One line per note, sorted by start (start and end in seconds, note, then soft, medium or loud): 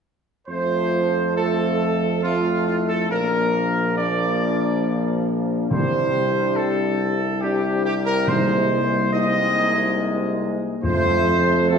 0.48 3.06 F2 medium
0.48 1.33 F3 soft
0.48 1.33 A3 medium
0.48 1.33 C4 medium
0.48 1.32 F4 medium
0.48 1.32 C5 medium
1.36 2.19 F3 soft
1.36 2.19 A3 medium
1.36 2.19 C4 medium
1.36 2.19 F4 soft
1.36 2.19 A4 medium
2.22 3.06 F3 soft
2.22 3.07 A3 soft
2.22 3.06 C4 medium
2.22 2.63 F4 medium
2.22 2.63 F4 soft
2.66 3.10 E4 medium
2.66 2.76 F4 medium
2.88 3.08 A4 medium
3.10 5.68 A#1 medium
3.10 3.94 F3 medium
3.10 3.94 A#3 medium
3.10 3.98 A#3 medium
3.10 3.97 D4 medium
3.10 3.94 A#4 medium
3.97 5.68 F3 medium
3.97 5.67 A#3 medium
3.97 5.68 A#3 medium
3.97 5.68 D4 medium
3.97 5.24 D5 medium
5.70 10.66 C2 medium
5.70 7.38 C3 medium
5.70 6.96 C3 medium
5.70 7.38 G3 medium
5.70 7.26 D4 medium
5.70 7.26 G4 medium
5.70 6.52 C5 medium
6.56 7.42 A4 medium
7.41 8.24 C3 medium
7.41 8.24 G3 medium
7.41 8.25 D4 medium
7.41 7.83 G4 medium
7.41 8.25 G4 medium
7.84 7.94 G4 medium
8.06 8.26 A#4 medium
8.27 8.98 C3 medium
8.27 9.52 C3 medium
8.27 8.98 G#3 medium
8.27 9.13 A#3 medium
8.27 9.09 D#4 medium
8.27 9.13 C5 medium
9.13 10.81 C3 medium
9.13 10.80 G#3 medium
9.13 10.80 A#3 medium
9.13 10.80 D#4 medium
9.13 10.37 D#5 medium
10.83 11.79 F2 medium
10.83 11.65 C3 medium
10.83 11.65 A3 medium
10.83 11.65 C4 medium
10.83 11.64 F4 medium
10.83 11.64 C5 medium
11.68 11.79 C3 medium
11.68 11.79 A3 medium
11.68 11.79 C4 medium
11.68 11.79 F4 medium
11.68 11.79 A4 medium